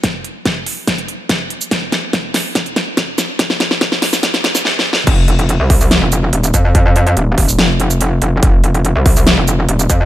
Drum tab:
CC |------------------------------------------------|------------------------------------------------|------------------------------------------------|x-----------------------------------------------|
HH |x-----x-----x-----o-----x--x--x-----x-----x-----|x-----x-----x-----o-----x--x--x-----x-----x-----|x-----x-----x-----o-----x--x--x-----------------|x-----x--x--x-----o-----x-----x-----x-----x-----|
SH |---------------------------------------------x--|------------------------------------------x-----|---------------------x-----------x--------------|---------------------x--------x--------x--x-----|
SD |o-----------o-----------o-----------o-----------|o-----o-----o-----o-----o-----o-----o-----o-----|o--o--o--o--o--o--o--o--o--o--o--o--o---o---o---|------------------------o-----------------------|
BD |o-----------o-----------o-----------o-----------|o-----------o-----------o-----------o-----------|o-----------o-----------o-----------------------|o-----------------o-----------------------o-----|

CC |------------------------------------------------|------------------------------------------------|
HH |x-----x--x--x-----o-----x-----x-----x-----x-----|x-----x--x--x-----o-----x-----x-----x-----x-----|
SH |---------------------x-----------x--------------|---------------------x--------x--------x--x-----|
SD |------------------------o-----------------------|------------------------o-----------------------|
BD |o-----------------o-----------------------------|o-----------------o-----------------------o-----|